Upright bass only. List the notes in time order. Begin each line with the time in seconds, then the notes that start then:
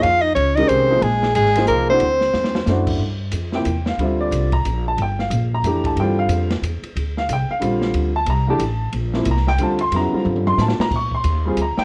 0.04 F2
0.36 C#2
0.69 C2
1.02 A#1
1.36 G#1
1.69 C2
2.01 D2
2.34 E2
2.67 F#2
2.99 G2
3.33 F2
3.66 E2
3.98 D2
4.31 C2
4.65 A#1
4.97 G1
5.30 A#1
5.63 F2
5.96 G2
6.29 F2
6.62 E2
6.83 muted upright bass stroke
6.96 D2
7.29 C2
7.49 muted upright bass stroke
7.61 A#1
7.94 D2
8.26 C2
8.59 A1
8.93 A#1
9.26 C2
9.58 D2
9.92 F2
10.13 muted upright bass stroke
10.26 G2
10.58 A2
10.79 muted upright bass stroke
10.91 A#2
11.24 D#2
11.57 D2
11.78 muted upright bass stroke